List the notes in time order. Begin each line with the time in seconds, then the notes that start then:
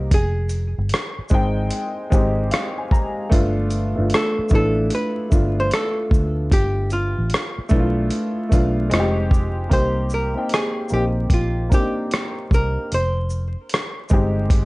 Already playing: A#3 C4 D#4 F#4 G4 A#4
0.11 F1 G#4, kick, closed hi-hat
0.49 closed hi-hat, shaker
0.78 G1
0.89 closed hi-hat
0.94 cross-stick
1.19 muted fingered electric bass stroke
1.29 G#1 G#3 C4 D#4, kick, shaker
1.34 G5
1.70 closed hi-hat
2.10 G#1 G#3 C4 D#4 G4, kick, shaker
2.51 F5, cross-stick, closed hi-hat
2.78 G#5
2.91 A#5, kick, shaker
3.29 G1 A3 B3 D4 F4, kick, closed hi-hat
3.70 closed hi-hat, shaker
3.96 G1 A3 B3 D4 F4
4.10 closed hi-hat
4.14 A4, cross-stick
4.39 muted fingered electric bass stroke
4.49 A1 A3 B3 D4, kick, shaker
4.53 E4 A4
4.90 closed hi-hat
4.95 B4
5.30 G1 A3 B3 D4 F4, kick, shaker
5.60 C5
5.71 A4, cross-stick, closed hi-hat
6.11 D2, kick, shaker
6.52 G1 G4, kick, closed hi-hat
6.90 F4, closed hi-hat, shaker
7.18 A1
7.30 closed hi-hat
7.34 cross-stick
7.58 muted fingered electric bass stroke
7.69 B1 A3 B3 D4 E4, kick, shaker
7.79 F4
8.11 closed hi-hat
8.49 B1 A3 B3 D4 F4, kick, closed hi-hat, shaker
8.90 F1 G#3 C4 D#4 F4, closed hi-hat
8.94 cross-stick
9.00 G4
9.31 kick, shaker
9.70 C2 A#3 C4 D#4 G4 C5, kick, closed hi-hat
10.10 shaker
10.14 A#4
10.34 A#3 C4 D#4 G5
10.49 closed hi-hat
10.54 G#4, cross-stick
10.89 A#1 A#3 C4 D#4, shaker
10.94 G4
11.30 A#1 F4, kick, closed hi-hat
11.70 A#3 C4 D4 G4, kick, closed hi-hat, shaker
11.74 G4
11.79 D#4
12.11 cross-stick, closed hi-hat
12.51 C2 A#4, kick, shaker
12.92 F1 C5, closed hi-hat
13.30 shaker
13.69 closed hi-hat
13.74 cross-stick
14.09 G1 G#3 C4 D#4, kick, shaker
14.13 G4
14.50 kick, closed hi-hat